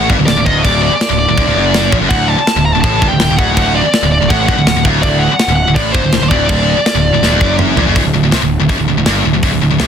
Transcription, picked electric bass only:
0.09 G1
0.18 D1
0.27 D1
0.36 D1
0.46 D1
0.64 D1
0.92 muted picked electric bass stroke
1.10 D1
1.28 D1
1.37 D#1
1.46 D1
1.56 F#1
1.92 A#1
2.01 F#1
2.10 D1
2.37 muted picked electric bass stroke
2.56 D1
2.75 D1
2.83 A1
3.02 G1
3.10 D1
3.19 D1
3.29 D1
3.38 D1
3.57 D1
3.84 muted picked electric bass stroke
4.03 D1
4.21 D1
4.30 A1
4.48 G1
4.57 D1
4.65 D1
4.75 D1
4.85 D1
5.03 D1
5.30 muted picked electric bass stroke
5.48 D1
5.67 D1
5.76 A1
5.94 G1
6.03 D1
6.13 D1
6.21 D1
6.31 D1
6.49 D1
6.77 muted picked electric bass stroke
6.95 D1
7.13 D1
7.22 D#1
7.31 D1
7.41 F#1
7.76 A#1
7.86 F#1
7.96 D1
8.05 D1
8.13 D1
8.22 D1
8.32 C2
8.41 D1
8.59 D1
8.69 F#1
8.78 D1
8.88 D1
8.97 D1
9.06 G1
9.25 D1
9.34 D1
9.43 D1
9.53 D1
9.62 D1
9.71 D1
9.81 C2

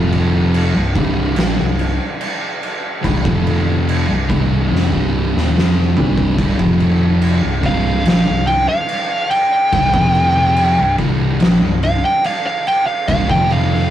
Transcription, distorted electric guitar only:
Already playing: F2 C3 F3
0.75 C2 G2
0.94 C2 G2 C3
1.36 A#2 F3
1.56 C2 G2
3.02 C2 G2
3.23 F2 C3 F3
4.08 C2 G2
4.27 C2 G2 C3
4.68 F2 C3
4.89 C2 G2 C3
5.33 D#2 A#2
5.54 F2 C3 F3
5.96 C2 G2 C3
6.37 C2 G2
6.58 F2 C3 F3
7.42 C2 G2
7.62 C2 G2 C3
8.05 A#2 F3
8.27 C2 G2
9.72 C2 G2
9.93 F2 C3 F3
10.79 C2 G2
10.98 C2 G2 C3
11.40 A#2 F3
11.62 C2 G2
13.08 C2 G2
13.29 F2 C3 F3

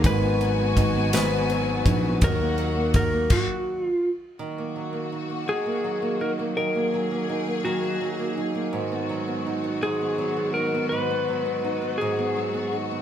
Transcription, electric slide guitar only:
0.06 B4
1.15 B4
2.24 A#4
2.96 A#4
3.32 F#4
3.85 F4
5.49 G#4
6.21 A#4
6.57 A#4
7.65 F#4
9.83 G#4
10.54 A#4
10.89 B4
11.98 G#4

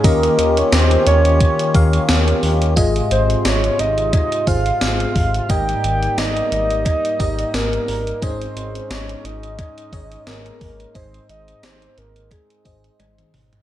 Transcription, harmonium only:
Already playing: C#4
0.04 D#3 A#3 F4 G4
2.77 C3 G#3
5.50 G3 A#3 D#4
8.23 G#3 C#4
10.95 C4

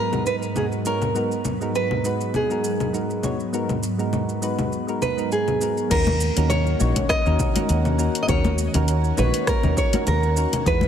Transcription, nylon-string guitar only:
Already playing: A#4
0.27 B4
0.57 G#4
0.87 A#4
1.75 B4
2.36 G#4
5.02 B4
5.32 G#4
5.91 A#4
6.50 C#5
7.09 D#5
8.23 D#5
8.29 C#5
9.19 B4
9.49 A#4
9.78 C#5
10.08 A#4
10.67 B4

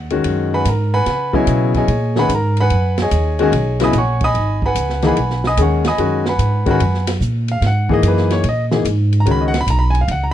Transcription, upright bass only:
Already playing: D#2
0.25 F#2
0.65 G#2
1.06 C#3
1.47 B2
1.88 A#2
2.29 G#2
2.71 F#2
3.11 D#2
3.52 B1
3.93 A#1
4.34 G#1
4.75 C#2
5.17 B1
5.57 D#2
5.98 F#2
6.38 G#2
6.80 F#2
7.20 A#2
7.61 G#2
8.03 F#2
8.44 A#2
8.85 G#2
9.25 C#2
9.66 B1
10.08 C#2

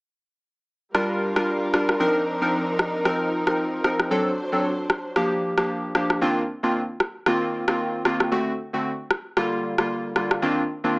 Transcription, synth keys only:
0.94 G3 D4 F4 A#4
1.36 G3 D4 F4 A#4
1.74 G3 D4 F4 A#4
2.00 F3 C4 D4 D#4 A#4
2.41 F3 C4 D4 D#4 A#4
3.05 F3 C4 D#4 A#4
3.47 F3 C4 D#4 A#4
3.84 F3 C4 D#4 A#4
4.11 F#3 C4 D4 A4
4.52 F#3 C4 D4 A4
5.16 F3 A#3 D4 G4
5.58 F3 A#3 D4 G4
5.95 F3 A#3 D4 G4
6.21 D#3 A#3 C4 D4 F4
6.63 D#3 A#3 C4 D4 F4
7.27 D#3 A#3 C4 F4
7.68 D#3 A#3 C4 F4
8.05 D#3 A#3 C4 F4
8.31 D3 A3 C4 F#4
8.73 D3 A3 C4 F#4
9.37 D3 G3 A#3 F4
9.78 D3 G3 A#3 F4
10.16 D3 G3 A#3 F4
10.42 D#3 A#3 C4 D4 F4
10.84 D#3 A#3 C4 D4 F4

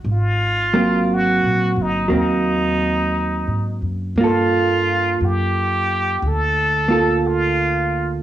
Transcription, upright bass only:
0.04 G#1
1.42 A#1
1.76 G1
2.10 D#2
3.47 G#2
3.82 F#2
4.16 G2
5.21 F#2
6.22 D2

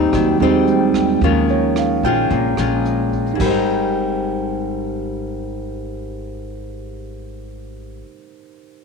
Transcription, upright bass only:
Already playing: D#2
0.13 D#2
0.40 D#2
1.21 D#2
2.03 A#1
2.30 A#1
2.58 A#1
3.40 G#1

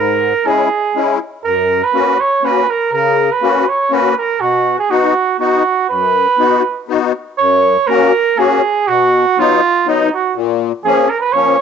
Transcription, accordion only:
Already playing: G#2
0.45 G#3 C#4 E4
0.95 G#3 C#4 E4
1.45 F#2
1.93 A#3 C#4 F#4
2.42 A#3 C#4 F#4
2.92 C#3
3.42 A#3 C#4 F#4
3.90 A#3 C#4 F#4
4.41 B2
4.91 B3 D#4 F#4
5.39 B3 D#4 F#4
5.90 F#2
6.38 B3 D#4 F#4
6.88 B3 D#4 F#4
7.40 F#2
7.88 A#3 C#4 F#4
8.37 A#3 C#4 F#4
8.89 B2
9.37 F#3 B3 D#4
9.86 F#3 B3 D#4
10.35 A#2
10.85 F3 A#3 C#4
11.34 F3 A#3 C#4

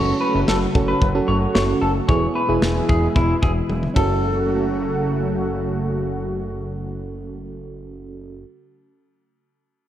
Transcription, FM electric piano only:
Already playing: C#4 F#4 A4
0.75 C#4 F#4 A4
1.15 C#4 F#4 A4
2.09 B3 E4 G#4
2.49 B3 E4 G#4
3.94 C#4 F#4
3.98 A4

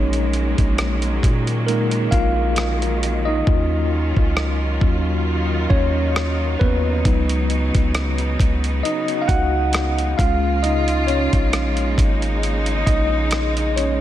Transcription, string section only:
Already playing: D#3 F#3 G#3 A#3
3.46 F#3 C#4 F4
5.26 D#4
7.04 C#3 B3
10.19 G#3 A#3 F4
11.97 D#4

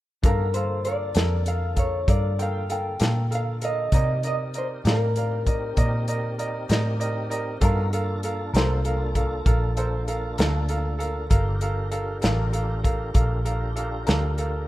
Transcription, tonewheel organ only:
0.22 B3 D#4 F#4 A#4
0.56 D3 A#3 F4 A4
3.94 C4 D#4 G4 A#4
7.60 B3 D#4 F#4 A#4
7.93 A#3 D4 F4 A4
11.28 D4 F4 G4 A#4

